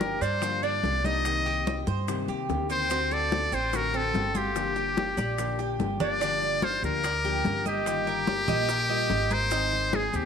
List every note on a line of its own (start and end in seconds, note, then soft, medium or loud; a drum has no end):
0.00 0.15 G1 medium
0.00 0.20 F3 soft
0.00 0.21 A#3 soft
0.00 0.21 D4 soft
0.00 0.20 G4 medium
0.00 0.21 G4 medium
0.00 0.23 A#4 medium
0.00 high bongo medium
0.00 high conga medium
0.00 maracas soft
0.21 0.79 G2 medium
0.21 0.42 D4 medium
0.21 0.65 C5 medium
0.21 muted nylon-string guitar stroke medium
0.21 high bongo soft
0.21 high conga soft
0.21 maracas medium
0.41 0.82 D3 medium
0.41 0.82 F3 medium
0.41 0.82 A#3 medium
0.41 0.83 D4 medium
0.41 0.62 F4 medium
0.41 0.83 G4 medium
0.41 high bongo medium
0.41 high conga soft
0.41 maracas medium
0.63 1.03 D4 medium
0.63 1.07 D5 medium
0.63 high bongo soft
0.63 high conga soft
0.63 maracas soft
0.83 1.81 C2 medium
0.83 1.03 F3 soft
0.83 1.04 A#3 soft
0.83 1.03 D4 soft
0.83 1.03 G4 medium
0.83 high bongo soft
0.83 low bongo medium
0.83 high conga medium
0.83 maracas soft
1.04 1.25 F3 soft
1.04 1.25 A#3 soft
1.04 1.24 D4 medium
1.04 1.45 D#4 medium
1.04 1.24 G4 medium
1.04 1.88 D#5 loud
1.04 high conga medium
1.04 maracas medium
1.25 1.66 C3 medium
1.25 1.65 D#3 medium
1.25 1.66 A#3 medium
1.25 1.66 C4 medium
1.25 1.67 G4 medium
1.25 high bongo medium
1.25 high conga soft
1.25 maracas medium
1.46 1.86 G4 medium
1.46 high bongo soft
1.46 high conga soft
1.46 maracas soft
1.66 1.86 D#3 medium
1.66 1.86 A#3 soft
1.66 1.86 C4 soft
1.66 1.87 G4 medium
1.66 high bongo medium
1.66 high conga medium
1.66 maracas soft
1.87 2.25 G2 medium
1.87 2.27 C5 medium
1.87 muted nylon-string guitar stroke medium
1.87 high bongo soft
1.87 high conga medium
1.87 maracas medium
2.08 2.48 C3 medium
2.08 2.48 D#3 medium
2.08 2.48 A#3 medium
2.08 2.49 C4 medium
2.08 2.49 G4 medium
2.08 high bongo medium
2.08 high conga soft
2.08 maracas medium
2.28 2.47 D#2 medium
2.28 2.68 G4 medium
2.28 high bongo soft
2.28 high conga soft
2.28 maracas soft
2.49 3.46 D2 medium
2.49 2.69 D#3 soft
2.49 2.69 A#3 soft
2.49 2.69 C4 soft
2.49 2.68 G4 medium
2.49 high bongo soft
2.49 low bongo medium
2.49 high conga soft
2.49 maracas soft
2.69 2.89 D#3 medium
2.69 2.90 A#3 medium
2.69 2.89 C4 medium
2.69 2.90 C4 medium
2.69 2.89 G4 medium
2.69 3.14 C5 loud
2.69 maracas medium
2.90 3.30 D3 medium
2.90 3.31 A3 medium
2.90 3.11 C4 medium
2.90 3.31 C4 medium
2.90 3.32 F#4 medium
2.90 high bongo medium
2.90 high conga soft
2.90 maracas medium
3.11 3.51 A4 medium
3.11 3.56 D5 medium
3.11 high bongo soft
3.11 high conga soft
3.11 maracas soft
3.32 3.51 D3 soft
3.32 3.51 A3 soft
3.32 3.52 C4 medium
3.32 3.52 F#4 medium
3.32 high bongo medium
3.32 high conga medium
3.32 maracas soft
3.52 4.10 A1 medium
3.52 3.72 C4 medium
3.52 3.78 C5 medium
3.52 muted nylon-string guitar stroke medium
3.52 high bongo soft
3.52 high conga soft
3.52 maracas medium
3.73 4.13 D3 medium
3.73 4.14 A3 medium
3.73 4.14 C4 medium
3.73 3.93 F#4 medium
3.73 4.14 F#4 medium
3.73 3.98 A#4 medium
3.73 high bongo medium
3.73 high conga soft
3.73 maracas medium
3.94 4.34 C4 medium
3.94 4.39 A4 medium
3.94 high bongo soft
3.94 high conga soft
3.94 maracas soft
4.14 5.11 G1 medium
4.14 4.34 D3 soft
4.14 4.34 A3 soft
4.14 4.34 C4 medium
4.14 4.34 F#4 medium
4.14 high bongo soft
4.14 low bongo medium
4.14 high conga medium
4.14 maracas soft
4.35 4.56 A3 soft
4.35 4.55 C4 soft
4.35 4.75 F4 medium
4.35 4.55 F#4 medium
4.35 5.81 G4 medium
4.35 high conga medium
4.35 maracas medium
4.56 4.96 D3 medium
4.56 4.95 F3 medium
4.56 4.96 A#3 medium
4.56 4.97 D4 medium
4.56 4.97 G4 medium
4.56 high bongo medium
4.56 high conga soft
4.56 maracas medium
4.76 5.16 G4 medium
4.76 high bongo soft
4.76 high conga soft
4.76 maracas soft
4.97 5.17 F3 soft
4.97 5.17 A#3 soft
4.97 5.17 D4 medium
4.97 5.17 G4 medium
4.97 high bongo medium
4.97 high conga medium
4.97 maracas soft
5.17 5.76 A#1 medium
5.17 5.58 D5 medium
5.17 muted nylon-string guitar stroke medium
5.17 high bongo soft
5.17 high conga medium
5.17 maracas medium
5.38 5.79 D3 medium
5.38 5.78 F3 medium
5.38 5.79 A#3 medium
5.38 5.80 D4 medium
5.38 5.80 G4 medium
5.38 high bongo medium
5.38 high conga soft
5.38 maracas medium
5.59 5.99 G4 medium
5.59 high bongo soft
5.59 high conga soft
5.59 maracas soft
5.79 6.77 G1 medium
5.79 6.00 F3 soft
5.79 6.00 A#3 soft
5.79 6.00 D4 medium
5.79 5.99 G4 medium
5.79 high bongo soft
5.79 low bongo medium
5.79 high conga medium
5.79 maracas soft
6.00 6.21 F3 soft
6.00 6.21 A#3 medium
6.00 6.20 D4 medium
6.00 6.21 D4 medium
6.00 6.20 G4 medium
6.00 6.66 D5 loud
6.00 low conga medium
6.00 maracas medium
6.21 6.62 D3 medium
6.21 6.61 F3 medium
6.21 6.62 A#3 medium
6.21 6.61 D4 medium
6.21 6.62 D4 medium
6.21 6.63 G4 medium
6.21 high bongo medium
6.21 high conga soft
6.21 maracas medium
6.42 high bongo soft
6.42 high conga soft
6.42 maracas soft
6.62 7.03 F4 medium
6.62 6.83 G4 medium
6.62 6.84 C5 loud
6.62 high bongo medium
6.62 high conga medium
6.62 maracas soft
6.82 7.41 D2 medium
6.82 7.04 F3 soft
6.82 7.04 A#3 medium
6.82 7.04 D4 medium
6.82 7.03 G4 medium
6.82 7.63 A#4 loud
6.82 high bongo soft
6.82 high conga soft
6.82 maracas medium
7.04 7.24 D5 medium
7.04 muted nylon-string guitar stroke medium
7.04 high bongo medium
7.04 high conga soft
7.04 maracas medium
7.24 7.44 F3 medium
7.24 7.45 A#3 medium
7.24 7.45 D4 medium
7.24 7.65 G4 medium
7.24 7.44 G4 medium
7.24 high bongo soft
7.24 high conga soft
7.24 maracas soft
7.44 8.42 G1 medium
7.44 7.85 F3 soft
7.44 7.86 A#3 medium
7.44 7.86 D4 medium
7.44 7.86 G4 medium
7.44 high bongo soft
7.44 low bongo medium
7.44 high conga medium
7.44 maracas soft
7.66 9.35 G4 loud
7.66 8.06 D#5 medium
7.66 high conga medium
7.66 maracas medium
7.86 8.27 D#3 medium
7.86 8.27 G3 medium
7.86 8.27 A#3 medium
7.86 8.27 F4 medium
7.86 8.28 G4 medium
7.86 high bongo medium
7.86 high conga soft
7.86 maracas medium
8.07 8.47 A#4 medium
8.07 high bongo soft
8.07 high conga soft
8.07 maracas soft
8.27 8.48 G3 medium
8.27 8.48 A#3 medium
8.27 8.48 F4 medium
8.27 8.47 G4 medium
8.27 high bongo medium
8.27 high conga loud
8.27 maracas soft
8.48 9.06 A#1 medium
8.48 8.68 G3 medium
8.48 8.69 A#3 medium
8.48 8.69 F4 medium
8.48 8.68 G4 medium
8.48 8.68 D#5 medium
8.48 high bongo soft
8.48 high conga medium
8.48 low conga medium
8.48 maracas medium
8.69 8.89 A#4 medium
8.69 high bongo medium
8.69 high conga soft
8.69 maracas medium
8.89 9.09 G3 medium
8.89 9.10 A#3 medium
8.89 9.10 F4 medium
8.89 9.10 G4 medium
8.89 9.30 D#5 medium
8.89 high bongo soft
8.89 high conga soft
8.89 maracas soft
9.10 10.07 G#1 medium
9.10 9.51 G3 soft
9.10 9.51 A#3 soft
9.10 9.52 F4 medium
9.10 9.52 G4 medium
9.10 high bongo soft
9.10 low bongo medium
9.10 high conga soft
9.10 maracas soft
9.30 9.51 A#4 medium
9.30 9.97 C5 loud
9.30 high conga medium
9.30 maracas medium
9.51 9.92 D#3 medium
9.51 9.92 G#3 medium
9.51 9.93 C4 medium
9.51 9.92 D#4 medium
9.51 9.93 G#4 medium
9.51 high bongo medium
9.51 high conga soft
9.51 maracas medium
9.71 high bongo soft
9.71 high conga soft
9.71 maracas soft
9.93 10.13 D#3 soft
9.93 10.13 G#3 medium
9.93 10.13 C4 medium
9.93 10.25 G#4 medium
9.93 10.12 G#4 medium
9.93 10.17 G#4 medium
9.93 high bongo medium
9.93 high conga loud
9.93 maracas soft
10.13 10.25 D#2 loud
10.13 10.25 G#3 medium
10.13 10.25 C4 medium
10.13 10.25 G4 medium
10.13 10.25 G#4 medium
10.13 high bongo soft
10.13 high conga soft
10.13 maracas medium